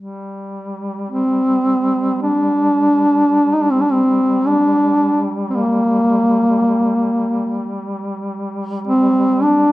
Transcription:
0.00 9.72 G3 soft
1.09 2.18 C4 medium
2.22 3.55 D4 medium
3.53 3.63 D#4 medium
3.62 3.73 D4 medium
3.71 3.82 C4 medium
3.80 3.93 D4 medium
3.92 4.48 C4 medium
4.47 5.31 D4 medium
5.50 5.58 C4 soft
5.56 7.78 A#3 medium
8.88 9.44 C4 medium
9.42 9.72 D4 loud

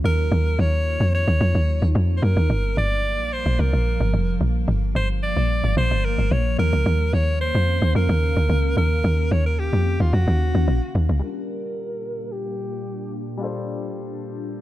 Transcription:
0.00 2.46 D#3 medium
0.00 2.46 F#3 medium
0.00 11.18 A#3 medium
0.00 2.46 F4 medium
0.04 0.30 D#2 medium
0.04 2.47 D#4 medium
0.04 0.62 A#4 loud
0.32 0.57 D#2 loud
0.59 0.98 D#2 loud
0.59 1.14 C#5 loud
1.00 1.26 F2 medium
1.15 1.92 C#5 loud
1.27 1.40 D#2 medium
1.41 1.54 F2 loud
1.55 1.80 D#2 medium
1.82 1.94 D#2 medium
1.95 2.21 F2 loud
2.17 2.25 C5 medium
2.22 2.36 F#2 loud
2.22 2.78 A#4 loud
2.37 2.49 D#2 medium
2.50 2.75 G1 loud
2.50 6.55 D3 medium
2.50 6.55 F3 medium
2.50 6.55 G3 medium
2.50 11.19 F5 medium
2.77 3.20 G1 loud
2.77 3.34 D5 loud
3.19 3.44 A#1 medium
3.33 3.62 C5 loud
3.46 3.58 A#1 medium
3.59 3.72 C2 medium
3.59 4.41 A#4 medium
3.73 3.99 A#1 medium
4.00 4.13 G1 medium
4.13 4.39 F1 loud
4.41 4.66 A#1 medium
4.68 4.94 G1 loud
4.95 5.34 G1 loud
4.95 5.08 C5 loud
5.23 5.74 D5 loud
5.37 5.62 A#1 medium
5.64 5.76 G1 medium
5.77 5.90 A#1 loud
5.77 6.07 C5 loud
5.91 6.17 G1 medium
6.05 6.34 A#4 loud
6.18 6.31 G1 medium
6.31 6.57 A#1 loud
6.31 6.59 C#5 loud
6.59 6.72 D#2 loud
6.59 11.18 C#3 medium
6.59 11.18 D#3 medium
6.59 11.18 C#4 medium
6.59 7.15 A#4 loud
6.73 6.85 C#2 medium
6.86 7.12 D#2 loud
7.13 7.52 D#2 loud
7.13 7.40 C#5 loud
7.41 7.92 C5 loud
7.55 7.80 F2 medium
7.82 7.94 D#2 loud
7.95 8.08 F2 loud
7.95 8.73 A#4 loud
8.09 8.35 D#2 loud
8.36 8.49 D2 medium
8.49 8.75 C#2 loud
8.77 9.02 D#2 medium
8.77 9.34 A#4 loud
9.04 9.30 D#2 loud
9.31 9.70 D#2 loud
9.31 9.46 C#5 loud
9.46 9.61 A#4 medium
9.59 10.02 G4 medium
9.73 9.99 F2 medium
10.00 10.12 D#2 medium
10.00 10.15 F4 medium
10.13 10.27 F2 loud
10.13 10.96 F#4 medium
10.27 10.53 D#2 loud
10.55 10.67 D#2 medium
10.68 10.81 A#1 medium
10.95 11.08 D#2 medium
11.09 11.22 C#2 medium
11.19 14.61 A#2 medium
11.19 13.35 G3 medium
11.19 14.61 G3 medium
11.19 14.61 A#3 medium
11.19 13.36 D4 medium
11.19 14.61 D4 medium
11.19 14.61 F4 medium
11.19 13.37 F4 medium
11.19 12.34 A#4 loud
11.26 13.38 A#4 medium
12.32 13.14 G4 medium
13.37 14.61 G3 medium
13.37 14.61 D4 medium
13.37 14.61 F4 medium
13.43 14.61 A4 medium
13.43 14.61 C5 medium

